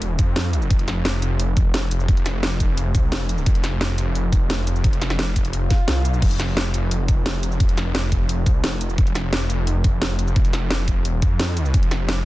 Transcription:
Already playing: detuned saw bass F1
0.02 closed hi-hat, shaker
0.19 detuned saw bass F2, kick, closed hi-hat, shaker
0.36 snare, closed hi-hat
0.53 closed hi-hat, shaker
0.62 shaker
0.70 detuned saw bass F1, kick, closed hi-hat
0.79 closed hi-hat
0.88 snare, closed hi-hat, shaker
1.05 snare, closed hi-hat
1.22 closed hi-hat, shaker
1.40 closed hi-hat, shaker
1.57 detuned saw bass F1, kick, closed hi-hat, shaker
1.74 snare, closed hi-hat
1.91 closed hi-hat, shaker
2.00 shaker
2.08 kick, closed hi-hat
2.17 closed hi-hat
2.26 snare, closed hi-hat, shaker
2.43 detuned saw bass F1, snare, closed hi-hat
2.60 kick, closed hi-hat, shaker
2.77 closed hi-hat, shaker
2.95 detuned saw bass C2, kick, closed hi-hat, shaker
3.12 detuned saw bass F1, snare, closed hi-hat
3.29 closed hi-hat, shaker
3.38 shaker
3.46 detuned saw bass F1, kick, closed hi-hat
3.55 closed hi-hat
3.64 snare, closed hi-hat, shaker
3.81 snare, closed hi-hat
3.98 closed hi-hat, shaker
4.15 closed hi-hat, shaker
4.33 detuned saw bass F1, kick, closed hi-hat, shaker
4.50 snare, closed hi-hat
4.67 closed hi-hat, shaker
4.76 shaker
4.84 kick, closed hi-hat
4.93 closed hi-hat
5.02 snare, closed hi-hat, shaker
5.10 snare, closed hi-hat
5.19 detuned saw bass F1, snare, closed hi-hat
5.36 kick, closed hi-hat, shaker
5.45 closed hi-hat
5.53 closed hi-hat, swell, shaker
5.70 kick, snare, closed hi-hat, shaker
5.88 detuned saw bass C2, snare, closed hi-hat
6.05 closed hi-hat, shaker
6.14 shaker
6.22 detuned saw bass F1, kick, closed hi-hat, crash
6.31 closed hi-hat
6.40 snare, closed hi-hat, shaker
6.57 snare, closed hi-hat
6.74 closed hi-hat, shaker
6.91 closed hi-hat, shaker
7.08 detuned saw bass F1, kick, closed hi-hat, shaker
7.26 snare, closed hi-hat
7.43 closed hi-hat, shaker
7.52 shaker
7.60 kick, closed hi-hat
7.69 closed hi-hat
7.78 snare, closed hi-hat, shaker
7.95 detuned saw bass F1, snare, closed hi-hat
8.12 kick, closed hi-hat, shaker
8.29 closed hi-hat, shaker
8.46 detuned saw bass C2, kick, closed hi-hat, shaker
8.64 detuned saw bass F1, snare, closed hi-hat
8.81 closed hi-hat, shaker
8.90 shaker
8.98 detuned saw bass F1, kick, closed hi-hat
9.07 closed hi-hat
9.15 snare, closed hi-hat, shaker
9.33 snare, closed hi-hat
9.50 closed hi-hat, shaker
9.67 closed hi-hat, shaker
9.84 detuned saw bass F1, kick, closed hi-hat, shaker
10.02 snare, closed hi-hat
10.19 closed hi-hat, shaker
10.27 shaker
10.36 kick, closed hi-hat
10.45 closed hi-hat
10.53 snare, closed hi-hat, shaker
10.70 detuned saw bass F1, snare, closed hi-hat
10.88 kick, closed hi-hat, shaker
11.05 closed hi-hat, shaker
11.22 detuned saw bass F2, kick, closed hi-hat, shaker
11.40 snare, closed hi-hat
11.57 closed hi-hat, shaker
11.65 shaker
11.74 detuned saw bass F1, kick, closed hi-hat
11.83 closed hi-hat
11.91 snare, closed hi-hat, shaker
12.09 snare, closed hi-hat

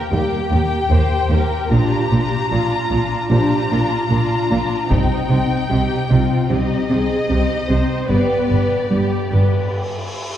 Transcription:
Already playing: violin section A#3 G4 G5, viola section A#4
0.12 cello section D#2, double bass section D#2, french horn section G3 A#3, violin section A#3 G4 G5, viola section G4
0.51 cello section D#2, double bass section D#2, violin section A#3 G4
0.90 cello section D#2, double bass section D#2, violin section A#3 G4, viola section C5
1.30 cello section D#2, double bass section D#2, violin section A#3 G4, viola section A#4
1.71 double bass section A#1, cello section A#2, french horn section F3 D4, violin section D4 F4 A#5, viola section G4
2.10 double bass section A#1, cello section A#2, violin section D4 F4
2.50 double bass section A#1, cello section A#2, violin section D4 F4, viola section F4
2.90 double bass section A#1, cello section A#2, violin section D4 F4
3.29 double bass section A#1, cello section A#2, french horn section F3 D4, violin section D4 F4 A#5, viola section G4
3.69 double bass section A#1, cello section A#2, violin section D4 F4, viola section F4
4.10 double bass section A#1, cello section A#2, violin section D4 F4
4.50 double bass section A#1, cello section A#2, violin section D4 F4
4.90 double bass section C2, cello section C3, french horn section G3 D#4, violin section C4 D#4 G5, viola section D#4, taiko
5.29 double bass section C2, cello section C3, violin section C4 D#4
5.69 double bass section C2, cello section C3, violin section C4 D#4, viola section G4
6.09 double bass section C2, cello section C3, violin section C4 D#4, viola section F4
6.49 double bass section C2, cello section C3, french horn section G3 D#4, violin section C4 D#4 D#5, viola section G4
6.88 double bass section C2, cello section C3, violin section C4 D#4, viola section G#4
7.29 double bass section C2, cello section C3, violin section C4 D#4, viola section G4
7.69 double bass section C2, cello section C3, violin section C4 D#4, viola section C5
8.08 double bass section G1, cello section G2, french horn section G3 B3, violin section B3 G4 D5, viola section B4, cymbal swell
8.49 double bass section G1, cello section G2, violin section B3 G4
8.90 double bass section G1, cello section G2, violin section B3 G4, viola section G4
9.30 double bass section G1, cello section G2, violin section B3 G4, viola section B4

